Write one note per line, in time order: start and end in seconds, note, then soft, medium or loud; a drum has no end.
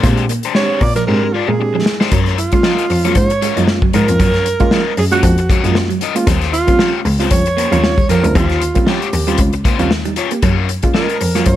0.00 0.34 A#2 loud
0.00 0.27 G#3 medium
0.00 0.15 A#3 medium
0.00 0.27 C4 medium
0.00 0.27 D4 medium
0.00 0.18 A#4 medium
0.00 kick loud
0.00 closed hi-hat loud
0.04 0.23 G#3 medium
0.04 0.23 D4 loud
0.04 0.28 G4 medium
0.04 0.23 G4 loud
0.04 0.23 C5 loud
0.17 muted clean electric guitar stroke soft
0.17 closed hi-hat soft
0.29 0.40 A#3 medium
0.29 muted overdriven electric guitar stroke soft
0.29 closed hi-hat medium
0.43 0.54 G#3 medium
0.43 0.54 D4 medium
0.43 0.55 G4 medium
0.43 0.56 C5 medium
0.43 closed hi-hat medium
0.55 0.80 G#3 medium
0.55 0.79 G#3 medium
0.55 0.66 G#3 medium
0.55 0.79 C4 medium
0.55 0.80 D4 medium
0.55 0.79 D4 medium
0.55 0.79 G4 medium
0.55 0.80 G4 medium
0.55 0.80 C5 medium
0.55 0.83 C#5 loud
0.55 snare loud
0.70 muted clean electric guitar stroke soft
0.81 1.01 A#2 loud
0.81 0.95 D5 loud
0.81 muted overdriven electric guitar stroke soft
0.81 kick medium
0.81 open hi-hat medium
0.95 1.04 F3 medium
0.95 1.06 A#4 loud
0.95 muted overdriven electric guitar stroke soft
0.95 snare soft
0.95 closed hi-hat soft
1.06 1.28 G#2 loud
1.06 1.31 G#3 medium
1.06 1.27 G#3 medium
1.06 1.31 C4 medium
1.06 1.31 D4 medium
1.06 1.23 D4 medium
1.06 1.32 G4 medium
1.06 1.22 G4 medium
1.06 1.34 A#4 loud
1.06 1.22 C5 loud
1.22 1.31 G#3 medium
1.22 muted overdriven electric guitar stroke soft
1.33 1.50 G#3 medium
1.33 1.49 D4 medium
1.33 1.49 F4 medium
1.33 1.49 G4 medium
1.33 1.49 D5 medium
1.33 muted clean electric guitar stroke soft
1.47 1.57 A#2 medium
1.47 1.57 G#3 medium
1.47 2.00 G#4 medium
1.47 muted overdriven electric guitar stroke medium
1.59 1.83 G#3 medium
1.59 1.83 C4 medium
1.59 1.83 D4 medium
1.59 1.84 G4 medium
1.59 muted overdriven electric guitar stroke soft
1.74 1.83 F3 medium
1.74 muted overdriven electric guitar stroke soft
1.86 muted clean electric guitar stroke soft
1.86 snare loud
2.00 2.09 G#3 medium
2.00 2.12 G#3 medium
2.00 2.12 D4 medium
2.00 2.12 G4 medium
2.00 2.13 C5 medium
2.00 snare loud
2.12 2.42 F#2 loud
2.12 2.23 F#3 medium
2.12 2.36 C#4 medium
2.12 2.36 F4 medium
2.12 2.36 A#4 loud
2.12 2.37 C#5 loud
2.12 kick loud
2.12 closed hi-hat medium
2.26 snare soft
2.26 closed hi-hat soft
2.38 3.12 F4 medium
2.38 muted clean electric guitar stroke soft
2.38 closed hi-hat medium
2.52 2.75 G#3 medium
2.52 2.61 G#3 medium
2.52 2.75 A#3 medium
2.52 2.76 C#4 medium
2.52 2.76 F4 loud
2.52 muted overdriven electric guitar stroke medium
2.52 kick medium
2.52 closed hi-hat medium
2.63 2.75 F3 medium
2.63 2.83 C#4 medium
2.63 2.83 F4 medium
2.63 2.83 A#4 medium
2.63 2.83 D#5 medium
2.63 snare loud
2.78 closed hi-hat soft
2.90 3.10 F2 medium
2.90 muted clean electric guitar stroke medium
2.90 muted overdriven electric guitar stroke soft
2.90 open hi-hat medium
3.05 3.13 F#3 medium
3.05 3.27 G#3 medium
3.05 3.27 A#3 medium
3.05 3.28 C#4 medium
3.05 3.15 C#4 medium
3.05 3.15 F4 medium
3.05 3.28 F4 medium
3.05 3.15 A#4 medium
3.05 3.16 C#5 medium
3.05 closed hi-hat soft
3.15 3.35 G#2 medium
3.15 3.64 C#5 loud
3.15 muted overdriven electric guitar stroke soft
3.15 muted clean electric guitar stroke soft
3.15 kick loud
3.15 closed hi-hat medium
3.30 muted overdriven electric guitar stroke soft
3.30 closed hi-hat soft
3.42 3.53 G#3 medium
3.42 3.57 C#4 medium
3.42 3.57 F4 medium
3.42 3.56 A#4 medium
3.42 3.56 C#5 medium
3.42 closed hi-hat medium
3.56 3.65 F#2 medium
3.56 3.65 F3 medium
3.56 3.79 G#3 medium
3.56 3.79 A#3 medium
3.56 3.80 C#4 medium
3.56 3.67 C#4 medium
3.56 3.80 F4 medium
3.56 3.67 F4 medium
3.56 3.67 A#4 medium
3.56 3.68 D#5 medium
3.56 closed hi-hat soft
3.67 muted overdriven electric guitar stroke soft
3.67 muted clean electric guitar stroke soft
3.67 snare loud
3.82 3.91 F#3 medium
3.82 kick loud
3.93 4.05 G#2 loud
3.93 4.05 F3 medium
3.93 4.09 C#4 medium
3.93 4.08 F4 medium
3.93 4.08 A#4 medium
3.93 4.94 A#4 loud
3.93 4.08 D#5 medium
3.93 closed hi-hat medium
4.08 4.17 F2 medium
4.08 4.31 G#3 medium
4.08 4.31 A#3 medium
4.08 4.31 C#4 medium
4.08 4.31 F4 medium
4.08 muted overdriven electric guitar stroke soft
4.08 closed hi-hat medium
4.20 4.50 F#2 loud
4.20 4.30 F#3 medium
4.20 4.44 C#4 medium
4.20 4.44 F4 medium
4.20 4.44 A#4 medium
4.20 4.44 C#5 loud
4.20 kick loud
4.20 closed hi-hat loud
4.34 snare soft
4.34 closed hi-hat soft
4.46 muted clean electric guitar stroke soft
4.46 closed hi-hat medium
4.60 4.83 G#3 loud
4.60 4.69 G#3 medium
4.60 4.83 A#3 loud
4.60 4.83 C#4 loud
4.60 4.83 F4 loud
4.60 muted overdriven electric guitar stroke soft
4.60 kick medium
4.60 closed hi-hat soft
4.71 4.83 F3 medium
4.71 4.91 C#4 medium
4.71 4.91 F4 loud
4.71 4.91 A#4 medium
4.71 4.91 D#5 loud
4.71 snare loud
4.97 5.17 F#2 medium
4.97 5.04 G#4 loud
4.97 muted clean electric guitar stroke medium
4.97 muted overdriven electric guitar stroke soft
4.97 open hi-hat medium
5.12 5.20 F#3 medium
5.12 5.35 G#3 medium
5.12 5.35 A#3 medium
5.12 5.35 C#4 medium
5.12 5.23 C#4 medium
5.12 5.35 F4 medium
5.12 5.24 F4 medium
5.12 5.97 F#4 loud
5.12 5.24 A#4 medium
5.12 5.24 C#5 medium
5.12 closed hi-hat medium
5.23 5.43 F2 loud
5.23 muted overdriven electric guitar stroke soft
5.23 kick medium
5.23 closed hi-hat loud
5.38 muted overdriven electric guitar stroke medium
5.38 closed hi-hat soft
5.49 5.60 G#3 medium
5.49 5.65 C#4 medium
5.49 5.65 F4 medium
5.49 5.64 A#4 medium
5.49 5.65 C#5 medium
5.49 kick loud
5.49 closed hi-hat medium
5.64 5.73 F#2 medium
5.64 5.72 F3 medium
5.64 5.87 G#3 medium
5.64 5.87 A#3 medium
5.64 5.87 C#4 medium
5.64 5.75 C#4 medium
5.64 5.87 F4 medium
5.64 5.75 F4 medium
5.64 5.76 A#4 medium
5.64 5.77 D#5 medium
5.64 closed hi-hat soft
5.75 muted overdriven electric guitar stroke soft
5.75 snare loud
5.90 5.98 F#3 medium
5.90 closed hi-hat soft
6.01 6.17 C#4 medium
6.01 6.16 F4 medium
6.01 6.16 A#4 medium
6.01 6.16 D#5 medium
6.01 muted clean electric guitar stroke soft
6.01 closed hi-hat medium
6.15 6.27 G#3 loud
6.15 6.27 A#3 medium
6.15 6.24 A#3 medium
6.15 6.27 C#4 medium
6.15 6.27 F4 loud
6.15 muted overdriven electric guitar stroke soft
6.15 closed hi-hat medium
6.27 6.58 D#2 loud
6.27 6.38 G3 medium
6.27 6.51 C#4 medium
6.27 6.52 F4 medium
6.27 6.52 G4 medium
6.27 6.52 C5 medium
6.27 kick loud
6.27 closed hi-hat loud
6.41 snare soft
6.41 closed hi-hat soft
6.53 7.01 F4 loud
6.53 muted clean electric guitar stroke soft
6.53 closed hi-hat medium
6.67 6.91 G3 medium
6.67 6.76 A#3 medium
6.67 6.91 C4 medium
6.67 6.91 C#4 medium
6.67 6.91 F4 loud
6.67 muted overdriven electric guitar stroke medium
6.67 kick medium
6.67 closed hi-hat soft
6.79 6.90 F3 medium
6.79 6.98 C#4 medium
6.79 6.99 F4 medium
6.79 6.99 G4 medium
6.79 6.99 C#5 medium
6.79 snare loud
7.05 7.25 C#2 loud
7.05 muted clean electric guitar stroke soft
7.05 muted overdriven electric guitar stroke soft
7.05 open hi-hat medium
7.19 7.42 G3 medium
7.19 7.28 G3 medium
7.19 7.43 C4 medium
7.19 7.43 C#4 medium
7.19 7.31 C#4 medium
7.19 7.43 F4 medium
7.19 7.32 F4 medium
7.19 7.32 G4 medium
7.19 7.32 C5 medium
7.19 snare soft
7.19 closed hi-hat medium
7.31 7.51 F2 medium
7.31 8.05 C#5 loud
7.31 muted clean electric guitar stroke soft
7.31 muted overdriven electric guitar stroke soft
7.31 kick medium
7.31 closed hi-hat loud
7.46 muted overdriven electric guitar stroke medium
7.46 closed hi-hat soft
7.57 7.68 A#3 medium
7.57 7.72 C#4 medium
7.57 7.72 F4 medium
7.57 7.72 G4 medium
7.57 7.72 C5 medium
7.57 closed hi-hat medium
7.71 7.80 D#2 medium
7.71 7.80 F3 medium
7.71 7.95 G3 medium
7.71 7.95 C4 medium
7.71 7.95 C#4 medium
7.71 7.84 C#4 medium
7.71 7.95 F4 loud
7.71 7.84 F4 medium
7.71 7.84 G4 medium
7.71 7.85 C#5 medium
7.71 closed hi-hat soft
7.83 muted clean electric guitar stroke soft
7.83 muted overdriven electric guitar stroke soft
7.83 snare loud
7.98 8.06 G3 medium
7.98 kick loud
7.98 closed hi-hat soft
8.09 8.20 F2 loud
8.09 8.20 F3 medium
8.09 8.25 C#4 medium
8.09 8.24 F4 medium
8.09 8.24 G4 medium
8.09 8.34 A#4 loud
8.09 8.24 C#5 medium
8.09 closed hi-hat medium
8.23 8.32 D2 loud
8.23 8.46 G3 medium
8.23 8.47 C4 medium
8.23 8.47 C#4 medium
8.23 8.47 F4 medium
8.23 muted overdriven electric guitar stroke soft
8.23 closed hi-hat medium
8.35 8.66 D#2 loud
8.35 8.46 G3 medium
8.35 8.59 C#4 medium
8.35 8.60 F4 medium
8.35 8.89 F4 loud
8.35 8.60 G4 loud
8.35 8.60 C5 loud
8.35 kick loud
8.35 closed hi-hat loud
8.49 snare soft
8.49 closed hi-hat soft
8.61 muted clean electric guitar stroke soft
8.61 closed hi-hat medium
8.75 8.98 G3 medium
8.75 8.84 A#3 medium
8.75 8.98 C4 medium
8.75 8.99 C#4 medium
8.75 8.99 F4 medium
8.75 muted overdriven electric guitar stroke soft
8.75 kick medium
8.75 closed hi-hat soft
8.86 8.97 F3 medium
8.86 9.06 C#4 medium
8.86 9.07 F4 medium
8.86 9.39 G4 medium
8.86 9.07 G4 medium
8.86 9.07 C#5 medium
8.86 snare loud
9.02 closed hi-hat soft
9.13 9.33 D#2 medium
9.13 muted clean electric guitar stroke soft
9.13 muted overdriven electric guitar stroke soft
9.13 open hi-hat medium
9.27 9.50 G3 medium
9.27 9.36 G3 medium
9.27 9.50 C4 medium
9.27 9.51 C#4 medium
9.27 9.39 C#4 soft
9.27 9.51 F4 medium
9.27 9.39 F4 medium
9.27 9.39 G4 medium
9.27 9.40 C5 medium
9.27 closed hi-hat soft
9.38 9.58 C#2 medium
9.38 muted clean electric guitar stroke soft
9.38 muted overdriven electric guitar stroke soft
9.38 kick medium
9.38 closed hi-hat loud
9.53 muted overdriven electric guitar stroke soft
9.53 closed hi-hat soft
9.65 9.76 A#3 medium
9.65 9.79 C#4 medium
9.65 9.79 F4 medium
9.65 9.78 G4 medium
9.65 9.79 C5 medium
9.65 kick loud
9.65 closed hi-hat medium
9.79 9.88 D#2 medium
9.79 9.88 F3 medium
9.79 9.91 G3 medium
9.79 9.91 C4 medium
9.79 9.91 C#4 medium
9.79 9.90 C#4 medium
9.79 9.91 F4 loud
9.79 9.90 F4 medium
9.79 9.90 G4 medium
9.79 9.91 C#5 medium
9.79 closed hi-hat soft
9.91 muted overdriven electric guitar stroke soft
9.91 snare loud
10.05 10.14 G3 medium
10.05 10.17 G3 soft
10.05 10.16 D#4 medium
10.05 closed hi-hat soft
10.16 10.32 C#4 medium
10.16 10.31 F4 medium
10.16 10.32 F4 medium
10.16 10.31 G4 medium
10.16 10.31 C#5 medium
10.16 muted clean electric guitar stroke soft
10.16 closed hi-hat medium
10.31 10.40 A#3 medium
10.31 10.56 A#3 soft
10.31 10.56 G4 medium
10.31 muted overdriven electric guitar stroke soft
10.31 closed hi-hat medium
10.42 10.74 F#2 loud
10.42 10.54 F#3 medium
10.42 10.67 C#4 medium
10.42 10.67 F4 medium
10.42 10.67 A#4 loud
10.42 10.67 C#5 loud
10.42 kick loud
10.42 closed hi-hat loud
10.69 muted clean electric guitar stroke soft
10.69 closed hi-hat medium
10.82 11.06 G#3 medium
10.82 10.92 G#3 medium
10.82 11.06 A#3 medium
10.82 11.06 C#4 medium
10.82 11.07 F4 loud
10.82 muted overdriven electric guitar stroke soft
10.82 kick medium
10.82 closed hi-hat soft
10.94 11.06 F3 medium
10.94 11.15 C#4 medium
10.94 11.15 F4 medium
10.94 11.43 A#4 medium
10.94 11.15 A#4 medium
10.94 11.16 D#5 medium
10.94 snare loud
11.09 closed hi-hat soft
11.20 11.41 F2 medium
11.20 muted overdriven electric guitar stroke soft
11.20 muted clean electric guitar stroke soft
11.20 open hi-hat medium
11.35 11.44 F#3 medium
11.35 11.56 G#3 medium
11.35 11.56 A#3 medium
11.35 11.56 C#4 medium
11.35 11.46 C#4 soft
11.35 11.56 F4 medium
11.35 11.46 F4 soft
11.35 11.46 A#4 medium
11.35 11.46 C#5 medium
11.35 snare soft
11.35 closed hi-hat soft
11.46 11.56 F#2 loud
11.46 11.56 C#5 loud
11.46 muted overdriven electric guitar stroke soft
11.46 muted clean electric guitar stroke soft
11.46 kick medium
11.46 closed hi-hat loud